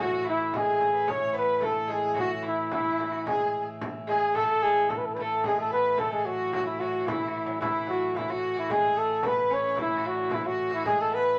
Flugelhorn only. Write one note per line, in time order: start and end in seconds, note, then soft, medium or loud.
0.02 0.26 F#4 medium
0.29 0.58 E4 medium
0.57 1.12 G#4 medium
1.10 1.37 C#5 loud
1.37 1.66 B4 medium
1.65 1.94 A4 medium
1.92 2.19 G#4 medium
2.20 2.32 F#4 medium
2.47 2.72 E4 medium
2.74 3.24 E4 medium
3.27 3.65 G#4 medium
4.10 4.38 G#4 medium
4.36 4.63 A4 loud
4.62 4.91 G#4 loud
4.89 4.99 A4 medium
4.97 5.07 B4 medium
5.06 5.16 A4 medium
5.14 5.24 B4 medium
5.22 5.45 A4 medium
5.47 5.58 G#4 medium
5.61 5.72 A4 medium
5.73 6.00 B4 medium
5.99 6.12 A4 medium
6.12 6.27 G#4 medium
6.25 6.53 F#4 medium
6.54 6.65 F#4 medium
6.66 6.81 E4 medium
6.80 7.09 F#4 medium
7.08 7.60 E4 medium
7.61 7.86 E4 medium
7.89 8.19 F#4 medium
8.17 8.33 E4 medium
8.31 8.57 F#4 medium
8.59 8.73 E4 medium
8.71 8.99 G#4 medium
8.98 9.28 A4 medium
9.26 9.55 B4 medium
9.54 9.79 C#5 medium
9.81 10.08 E4 medium
10.07 10.35 F#4 medium
10.34 10.48 E4 medium
10.46 10.73 F#4 medium
10.74 10.86 E4 medium
10.86 10.98 G#4 medium
11.00 11.16 A4 medium
11.14 11.39 B4 loud